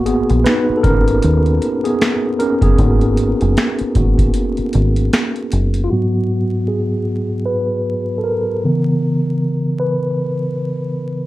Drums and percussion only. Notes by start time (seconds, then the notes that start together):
0.06 closed hi-hat
0.30 closed hi-hat
0.46 finger snap, snare, closed hi-hat
0.84 kick, closed hi-hat
1.08 closed hi-hat
1.22 closed hi-hat
1.46 closed hi-hat
1.62 closed hi-hat
1.85 closed hi-hat
2.01 finger snap, snare, closed hi-hat
2.40 closed hi-hat
2.61 kick, closed hi-hat
2.78 kick, closed hi-hat
3.01 closed hi-hat
3.17 closed hi-hat
3.41 closed hi-hat
3.57 finger snap, snare, closed hi-hat
3.79 closed hi-hat
3.95 kick, closed hi-hat
4.18 kick, closed hi-hat
4.34 closed hi-hat
4.57 closed hi-hat
4.73 closed hi-hat
4.96 closed hi-hat
5.13 finger snap, snare, closed hi-hat
5.36 closed hi-hat
5.52 closed hi-hat
5.74 closed hi-hat